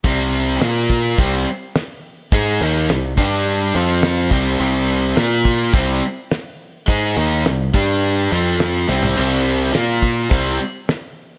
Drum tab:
CC |----------------|----------------|----------------|----------------|
HH |o---o---o---o---|o---o---o---o---|o---o---o---o---|o---o---o---o---|
SD |----o-------o---|----o-------o---|----o-------o---|----o-------o-o-|
FT |----------------|----------------|----------------|---------------o|
BD |o-----o-o-------|o-----o-------o-|------o-o-------|o-----o---------|

CC |x---------------|
HH |----o---o---o---|
SD |----o-------o---|
FT |----------------|
BD |------o-o-------|